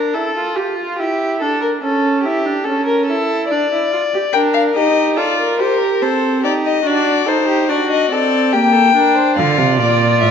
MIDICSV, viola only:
0, 0, Header, 1, 2, 480
1, 0, Start_track
1, 0, Tempo, 837989
1, 1047, Time_signature, 3, 2, 24, 8
1, 5905, End_track
2, 0, Start_track
2, 0, Title_t, "Viola"
2, 0, Program_c, 0, 41
2, 0, Note_on_c, 0, 62, 65
2, 82, Note_on_c, 0, 64, 63
2, 90, Note_off_c, 0, 62, 0
2, 204, Note_off_c, 0, 64, 0
2, 207, Note_on_c, 0, 65, 63
2, 322, Note_on_c, 0, 67, 56
2, 330, Note_off_c, 0, 65, 0
2, 442, Note_off_c, 0, 67, 0
2, 446, Note_on_c, 0, 65, 65
2, 567, Note_on_c, 0, 64, 61
2, 576, Note_off_c, 0, 65, 0
2, 808, Note_on_c, 0, 62, 60
2, 816, Note_off_c, 0, 64, 0
2, 1045, Note_off_c, 0, 62, 0
2, 1049, Note_on_c, 0, 61, 69
2, 1290, Note_on_c, 0, 64, 67
2, 1298, Note_off_c, 0, 61, 0
2, 1406, Note_on_c, 0, 62, 60
2, 1414, Note_off_c, 0, 64, 0
2, 1526, Note_off_c, 0, 62, 0
2, 1530, Note_on_c, 0, 61, 61
2, 1771, Note_on_c, 0, 64, 64
2, 1780, Note_off_c, 0, 61, 0
2, 2009, Note_on_c, 0, 62, 66
2, 2018, Note_off_c, 0, 64, 0
2, 2125, Note_off_c, 0, 62, 0
2, 2128, Note_on_c, 0, 64, 60
2, 2243, Note_off_c, 0, 64, 0
2, 2247, Note_on_c, 0, 65, 67
2, 2293, Note_off_c, 0, 65, 0
2, 2369, Note_on_c, 0, 67, 57
2, 2415, Note_off_c, 0, 67, 0
2, 2490, Note_on_c, 0, 62, 68
2, 2721, Note_off_c, 0, 62, 0
2, 2726, Note_on_c, 0, 63, 71
2, 2963, Note_on_c, 0, 65, 72
2, 2971, Note_off_c, 0, 63, 0
2, 3204, Note_on_c, 0, 67, 68
2, 3213, Note_off_c, 0, 65, 0
2, 3446, Note_on_c, 0, 60, 68
2, 3455, Note_off_c, 0, 67, 0
2, 3688, Note_on_c, 0, 63, 72
2, 3697, Note_off_c, 0, 60, 0
2, 3921, Note_off_c, 0, 63, 0
2, 3924, Note_on_c, 0, 62, 74
2, 4159, Note_off_c, 0, 62, 0
2, 4164, Note_on_c, 0, 63, 74
2, 4405, Note_on_c, 0, 62, 66
2, 4413, Note_off_c, 0, 63, 0
2, 4641, Note_off_c, 0, 62, 0
2, 4644, Note_on_c, 0, 60, 65
2, 4890, Note_on_c, 0, 58, 72
2, 4899, Note_off_c, 0, 60, 0
2, 5124, Note_off_c, 0, 58, 0
2, 5127, Note_on_c, 0, 62, 74
2, 5375, Note_on_c, 0, 65, 86
2, 5384, Note_off_c, 0, 62, 0
2, 5905, Note_off_c, 0, 65, 0
2, 5905, End_track
0, 0, End_of_file